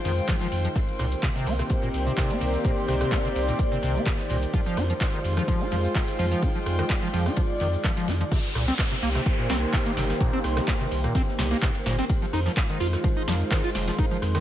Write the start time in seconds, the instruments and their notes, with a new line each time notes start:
Already playing: analog synth pad D#3 G#3 F4 C5, string section F4 C5 G5
0.05 sub bass F2, acid bass D#3, open hi-hat, ride
0.18 cabasa
0.28 acid bass F3, kick, snare, clap, closed hi-hat, ride, cabasa
0.40 acid bass F3, snare, closed hi-hat, cabasa
0.52 sub bass F2, open hi-hat, ride
0.65 acid bass F3, closed hi-hat, cabasa
0.75 acid bass C3, analog synth pad A#3 G4 C5, string section C4, kick, closed hi-hat, ride, cabasa
0.88 ride, cabasa
0.99 sub bass C2, acid bass A#2, cross-stick, open hi-hat, ride
1.12 closed hi-hat, cabasa
1.22 acid bass C3, kick, snare, clap, closed hi-hat, ride, cabasa
1.35 acid bass C3, closed hi-hat, cabasa
1.46 sub bass C2, acid bass C4, open hi-hat, ride
1.54 string section G4
1.58 acid bass C3, cross-stick, snare, closed hi-hat, cabasa
1.69 kick, closed hi-hat, ride, cabasa
1.82 acid bass A#2, ride, cabasa
1.94 sub bass C2, open hi-hat, ride
2.02 string section D5
2.06 acid bass C3, cabasa
2.17 acid bass C3, kick, snare, clap, closed hi-hat, open hi-hat, cabasa
2.30 acid bass C4, closed hi-hat, cabasa
2.41 sub bass C2, acid bass C3, open hi-hat, ride
2.53 snare, closed hi-hat, cabasa
2.64 acid bass A#2, kick, closed hi-hat, ride, cabasa
2.77 ride, cabasa
2.88 sub bass C2, acid bass C3, cross-stick, open hi-hat, ride
3.01 acid bass C3, cross-stick, closed hi-hat, cabasa
3.12 acid bass C4, kick, snare, clap, closed hi-hat, ride, cabasa
3.24 acid bass C3, snare, closed hi-hat, cabasa
3.35 sub bass C2, open hi-hat, ride
3.48 acid bass A#2, snare, closed hi-hat, cabasa
3.59 kick, closed hi-hat, ride, cabasa
3.72 acid bass C3, cabasa
3.83 sub bass C2, acid bass C3, open hi-hat, ride
3.95 acid bass C4, cabasa
4.06 acid bass C3, kick, snare, clap, closed hi-hat, ride, cabasa
4.19 snare, closed hi-hat, cabasa
4.29 sub bass C2, acid bass A#2, open hi-hat, ride
4.42 closed hi-hat, cabasa
4.54 acid bass F3, analog synth pad G#3 F4 C5, string section F4, kick, closed hi-hat, ride, cabasa
4.65 acid bass F3, ride, cabasa
4.77 sub bass F2, acid bass F4, cross-stick, open hi-hat, ride
4.90 acid bass F3, closed hi-hat, cabasa
4.95 string section C5
5.01 kick, snare, clap, closed hi-hat, ride, cabasa
5.13 acid bass D#3, closed hi-hat, cabasa
5.24 sub bass F2, open hi-hat, ride
5.37 acid bass F3, string section G5, cross-stick, snare, closed hi-hat, cabasa
5.48 acid bass F3, kick, closed hi-hat, ride, cabasa
5.61 acid bass F4, ride, cabasa
5.72 sub bass F2, acid bass F3, open hi-hat, ride
5.84 cabasa
5.95 acid bass D#3, kick, snare, clap, closed hi-hat, open hi-hat, cabasa
6.08 closed hi-hat, cabasa
6.19 sub bass F2, acid bass F3, open hi-hat, ride
6.31 acid bass F3, snare, closed hi-hat, cabasa
6.42 acid bass F4, analog synth pad D5, kick, closed hi-hat, ride, cabasa
6.55 acid bass F3, ride, cabasa
6.66 sub bass F2, cross-stick, open hi-hat, ride
6.78 acid bass D#3, cross-stick, closed hi-hat, cabasa
6.89 kick, snare, clap, closed hi-hat, ride, cabasa
7.02 acid bass F3, snare, closed hi-hat, cabasa
7.13 sub bass F2, acid bass F3, open hi-hat, ride
7.26 acid bass F4, cross-stick, snare, closed hi-hat, cabasa
7.36 acid bass F3, kick, closed hi-hat, ride, cabasa
7.49 cabasa
7.60 sub bass F2, acid bass D#3, open hi-hat, ride
7.73 cabasa
7.84 acid bass F3, kick, snare, clap, closed hi-hat, ride, cabasa
7.97 acid bass F3, snare, closed hi-hat, cabasa
8.08 sub bass F2, acid bass F4, snare, open hi-hat, ride
8.20 acid bass F3, closed hi-hat, cabasa
8.31 acid bass C3, analog synth pad D#3 A#3 G4 C5, kick, closed hi-hat, crash, ride, downlifter
8.44 ride
8.55 sub bass C2, acid bass A#2, cross-stick, open hi-hat, ride
8.68 acid bass C4, snare, closed hi-hat
8.79 kick, snare, clap, closed hi-hat, ride
8.91 acid bass C3, closed hi-hat
9.02 sub bass C2, acid bass A#3, open hi-hat, ride
9.15 acid bass C3, cross-stick, snare, closed hi-hat
9.26 kick, closed hi-hat, ride
9.39 acid bass A#2, ride
9.50 sub bass C2, acid bass C4, snare, open hi-hat, ride
9.73 acid bass C3, kick, snare, clap, closed hi-hat, open hi-hat
9.86 acid bass A#3, closed hi-hat
9.97 sub bass G1, acid bass C3, snare, open hi-hat, ride
10.09 snare, closed hi-hat
10.21 acid bass A#2, kick, closed hi-hat, ride
10.33 acid bass C4, ride
10.44 sub bass C2, cross-stick, open hi-hat, ride
10.57 acid bass C3, cross-stick, snare, closed hi-hat
10.67 acid bass A#3, kick, snare, clap, closed hi-hat
10.80 acid bass C3, snare, closed hi-hat
10.91 sub bass C2, open hi-hat, ride
11.03 acid bass A#2, cross-stick, snare, closed hi-hat
11.15 acid bass C4, kick, snare, closed hi-hat, ride
11.28 snare
11.39 sub bass C2, acid bass C3, snare, open hi-hat, ride
11.51 acid bass A#3, snare, ride
11.62 acid bass C3, kick, clap, closed hi-hat
11.75 closed hi-hat, ride
11.86 sub bass G1, acid bass A#2, snare, open hi-hat, ride
11.99 acid bass C4, snare, closed hi-hat
12.09 analog synth pad D#3 G#3 F4 C5, kick, closed hi-hat, ride
12.22 acid bass F3, ride
12.33 sub bass F2, acid bass D#4, cross-stick, open hi-hat, ride
12.46 acid bass F3, snare, closed hi-hat
12.57 kick, snare, clap, closed hi-hat, ride
12.69 acid bass D#3, closed hi-hat
12.80 sub bass F2, acid bass F4, open hi-hat, ride
12.93 cross-stick, snare, closed hi-hat
13.04 acid bass F3, kick, closed hi-hat, ride
13.17 acid bass D#4, ride
13.28 sub bass F2, acid bass F3, snare, open hi-hat, ride
13.51 acid bass D#3, kick, snare, clap, closed hi-hat, open hi-hat
13.64 acid bass F4, closed hi-hat
13.75 sub bass F1, snare, open hi-hat, ride
13.87 acid bass F3, snare, closed hi-hat
13.99 analog synth pad D#4, acid bass D#4, kick, closed hi-hat, ride
14.11 acid bass F3, ride
14.22 sub bass F2, cross-stick, open hi-hat, ride
14.35 acid bass D#3, cross-stick, snare, closed hi-hat